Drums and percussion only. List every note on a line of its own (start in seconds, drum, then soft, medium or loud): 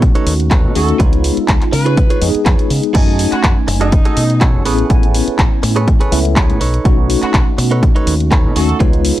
0.02 kick loud
0.02 closed hi-hat medium
0.15 closed hi-hat medium
0.27 open hi-hat loud
0.40 closed hi-hat soft
0.51 kick loud
0.51 clap loud
0.51 closed hi-hat medium
0.75 open hi-hat medium
0.89 closed hi-hat soft
1.00 kick loud
1.00 closed hi-hat medium
1.13 closed hi-hat soft
1.24 open hi-hat loud
1.37 closed hi-hat soft
1.48 kick loud
1.48 clap loud
1.48 closed hi-hat medium
1.61 clap soft
1.61 closed hi-hat soft
1.73 open hi-hat loud
1.86 closed hi-hat medium
1.97 kick loud
1.97 closed hi-hat medium
2.10 closed hi-hat medium
2.22 open hi-hat loud
2.35 closed hi-hat soft
2.46 kick loud
2.46 clap loud
2.46 closed hi-hat medium
2.59 closed hi-hat soft
2.70 open hi-hat medium
2.83 closed hi-hat soft
2.95 kick loud
2.95 closed hi-hat medium
2.95 crash medium
3.19 open hi-hat loud
3.32 clap soft
3.32 closed hi-hat soft
3.43 kick loud
3.43 clap loud
3.43 closed hi-hat medium
3.68 open hi-hat loud
3.81 closed hi-hat medium
3.92 kick loud
3.92 closed hi-hat medium
4.05 closed hi-hat medium
4.17 open hi-hat loud
4.30 closed hi-hat soft
4.41 kick loud
4.41 clap loud
4.41 closed hi-hat medium
4.66 open hi-hat loud
4.79 closed hi-hat soft
4.90 kick loud
4.90 closed hi-hat medium
5.03 closed hi-hat soft
5.14 open hi-hat loud
5.28 closed hi-hat soft
5.39 kick loud
5.39 clap loud
5.39 closed hi-hat medium
5.63 open hi-hat loud
5.76 closed hi-hat medium
5.88 kick loud
5.88 closed hi-hat medium
6.01 closed hi-hat medium
6.12 open hi-hat loud
6.25 closed hi-hat soft
6.36 kick loud
6.36 clap loud
6.36 closed hi-hat medium
6.50 closed hi-hat soft
6.61 open hi-hat loud
6.74 closed hi-hat soft
6.85 kick loud
6.85 closed hi-hat medium
7.10 open hi-hat loud
7.23 clap soft
7.23 closed hi-hat soft
7.34 kick loud
7.34 clap loud
7.34 closed hi-hat medium
7.58 open hi-hat loud
7.71 closed hi-hat soft
7.83 kick loud
7.83 closed hi-hat medium
7.96 closed hi-hat medium
8.07 open hi-hat loud
8.20 closed hi-hat soft
8.32 kick loud
8.32 clap loud
8.32 closed hi-hat medium
8.56 open hi-hat loud
8.69 closed hi-hat soft
8.80 kick loud
8.80 closed hi-hat medium
8.93 closed hi-hat soft
9.05 open hi-hat loud